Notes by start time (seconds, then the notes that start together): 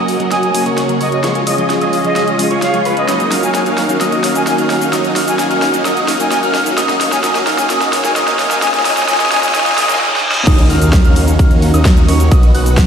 Already playing: C#3 F#3 A#3 C#4 F#4 A#4 C#5 D#5 D#6
0.08 open hi-hat
0.19 F#3 A#3 C#4 F#4, closed hi-hat
0.31 F#4 A#4 D#5 G#5 D#6, snare, closed hi-hat
0.43 G#5, closed hi-hat
0.54 F#3 A#3 C#4 F#4 G#5, open hi-hat
0.66 F#4 A#4 C#5 C#6, closed hi-hat
0.78 snare, closed hi-hat
0.89 F#3 A#3 C#4 F#4, closed hi-hat
1.01 F#4 A#4 C#5 D#5 C#6, open hi-hat
1.12 D#5, closed hi-hat
1.23 F3 G#3 C#4 F4 G#4 C#5 C#6, snare, closed hi-hat
1.35 closed hi-hat
1.47 F4 G#4 D#5 D#6, open hi-hat
1.58 F3 G#3 C#4 F4 D#5, closed hi-hat
1.70 snare, closed hi-hat
1.81 F4 G#4 D#5 D#6, closed hi-hat
1.93 open hi-hat
2.04 F3 G#3 C#4 F4 D#5, closed hi-hat
2.16 F4 G#4 D#5 D#6, snare, closed hi-hat
2.28 closed hi-hat
2.39 F3 G#3 C#4 F4, open hi-hat
2.51 F4 G#4 C#5 C#6, closed hi-hat
2.62 F5, snare, closed hi-hat
2.73 F3 G#3 C#4 F4, closed hi-hat
2.85 F4 G#4 B4 B5, open hi-hat
2.97 D#5, closed hi-hat
3.08 D#3 F#3 A#3 C#4 D#4 F#4 A#4 D#5 D#6, snare, closed hi-hat, riser, cabasa
3.20 closed hi-hat, cabasa
3.31 C#4 D#4 F#4 A#4 F5 F6, snare, open hi-hat
3.42 F#3 A#3 C#4 D#4 G#5, closed hi-hat, cabasa
3.55 G#5, snare, closed hi-hat, cabasa
3.66 C#4 D#4 F#4 A#4 F5 F6, closed hi-hat, cabasa
3.78 snare, open hi-hat
3.88 F#3 A#3 C#4 D#4, closed hi-hat, cabasa
4.00 F#3 A#3 C#4 D#4 F#4 A#4 D#5 D#6, snare, closed hi-hat, cabasa
4.12 closed hi-hat, cabasa
4.24 C#4 D#4 F#4 A#4 F5 F6, snare, open hi-hat
4.35 F#3 A#3 C#4 D#4 G#5, closed hi-hat, cabasa
4.47 G#5, snare, closed hi-hat, cabasa
4.58 C#4 D#4 F#4 A#4 F5 F6, closed hi-hat, cabasa
4.70 snare, open hi-hat
4.81 F#3 A#3 C#4 D#4, closed hi-hat, cabasa
4.92 F#3 A#3 C#4 D#4 F#4 A#4 D#5 D#6, snare, closed hi-hat, cabasa
5.05 closed hi-hat, cabasa
5.16 C#4 D#4 F#4 A#4 F5 F6, snare, open hi-hat
5.27 F#3 A#3 C#4 D#4 G#5, closed hi-hat, cabasa
5.39 G#5, snare, closed hi-hat, cabasa
5.51 C#4 D#4 F#4 A#4 F5 F6, closed hi-hat, cabasa
5.62 snare, open hi-hat
5.73 F#3 A#3 C#4 D#4, closed hi-hat, cabasa
5.85 F#3 A#3 C#4 D#4 F#4 A#4 D#5 D#6, snare, closed hi-hat, cabasa
5.97 closed hi-hat, cabasa
6.08 C#4 D#4 F#4 A#4 F5 F6, snare, open hi-hat
6.19 F#3 A#3 C#4 D#4 G#5, closed hi-hat, cabasa
6.31 G#5, snare, closed hi-hat, cabasa
6.43 C#4 D#4 F#4 A#4 F5 F6, closed hi-hat, cabasa
6.55 snare, open hi-hat
6.66 F#3 A#3 C#4 D#4, closed hi-hat, cabasa
6.77 C#3 F#3 A#3 C#4 D#4 F#4 A#4 C#5 D#5 D#6, snare, closed hi-hat, cabasa
6.89 snare, closed hi-hat, cabasa
7.01 C#4 D#4 F#4 A#4 F5 F6, snare, open hi-hat
7.12 F#3 A#3 C#4 D#4 G#5, snare, closed hi-hat, cabasa
7.23 F#3 A#3 C#4 D#4 F#4 A#4 D#5 D#6, snare, closed hi-hat, cabasa
7.35 snare, closed hi-hat, cabasa
7.47 C#4 D#4 F#4 A#4 F5 F6, snare, open hi-hat
7.58 F#3 A#3 C#4 D#4 G#5, snare, closed hi-hat, cabasa
7.69 F#3 A#3 C#4 D#4 F#4 A#4 D#5 D#6, snare, closed hi-hat, cabasa
7.81 snare, closed hi-hat, cabasa
7.93 C#4 D#4 F#4 A#4 F5 F6, snare, open hi-hat
8.04 F#3 A#3 C#4 D#4 G#5, snare, closed hi-hat, cabasa
8.15 F#3 A#3 C#4 D#4 F#4 A#4 D#5 D#6, snare, closed hi-hat, cabasa
8.28 snare, closed hi-hat, cabasa
8.39 C#4 D#4 F#4 A#4 F5 F6, snare, open hi-hat
8.50 F#3 A#3 C#4 D#4 G#5, snare, closed hi-hat, cabasa
8.62 F3 G#3 A#3 C#4 D#4 F4 A#4 D#5 G#5 D#6, snare, closed hi-hat, cabasa
8.68 snare
8.74 G#5, snare, closed hi-hat, cabasa
8.80 snare
8.85 F3 A#3 C#4 D#4 F4 A#4 D#5 G#5 D#6, snare, open hi-hat
8.91 snare
8.97 G#5, snare, cabasa
9.03 snare
9.08 F3 A#3 C#4 D#4 F4 A#4 D#5 G#5 D#6, snare, closed hi-hat, cabasa
9.14 snare
9.20 G#5, snare, closed hi-hat, cabasa
9.26 snare
9.31 F3 A#3 C#4 D#4 F4 A#4 D#5 G#5 D#6, snare, open hi-hat
9.37 snare
9.43 G#5, snare, closed hi-hat, cabasa
9.49 snare
9.54 F3 A#3 C#4 D#4 F4 A#4 D#5 G#5 D#6, snare, closed hi-hat, reverse cymbal, cabasa
9.60 snare
9.66 G#5, snare, closed hi-hat, cabasa
9.72 snare
9.77 F3 A#3 C#4 D#4 F4 A#4 D#5 G#5 D#6, snare, open hi-hat
9.83 snare
9.89 G#5, snare, closed hi-hat, cabasa
9.95 snare
10.01 snare
10.16 snare
10.32 snare
10.47 D#2 D#3 A#3 C#4 D#4 F#4 A#4 D#5 D#6, kick, closed hi-hat, crash, impact, cabasa
10.58 closed hi-hat, cabasa
10.70 D#2 C#4 D#4 F#4 A#4 F5 F6, open hi-hat
10.82 closed hi-hat, cabasa
10.93 kick, snare, closed hi-hat, cabasa
11.05 D#2 C#4 D#4 F#4 A#4 F5 F6, closed hi-hat, cabasa
11.16 open hi-hat
11.28 closed hi-hat, cabasa
11.39 D#2 C#4 D#4 F#4 A#4 F5 F6, kick, closed hi-hat, cabasa
11.51 closed hi-hat, cabasa
11.62 open hi-hat
11.74 D#2 C#4 D#4 F#4 A#4 D#5 D#6, closed hi-hat, cabasa
11.85 kick, snare, closed hi-hat, cabasa
11.97 closed hi-hat, cabasa
12.08 D#2 C#4 D#4 F#4 A#4 C#5 C#6, open hi-hat
12.20 closed hi-hat, cabasa
12.31 B1 D#3 F#3 B3 F#4 B4 D#5 D#6, kick, closed hi-hat, cabasa
12.43 closed hi-hat, cabasa
12.55 B1 F#4 B4 F#5 F#6, open hi-hat
12.66 closed hi-hat, cabasa
12.77 kick, snare, closed hi-hat, cabasa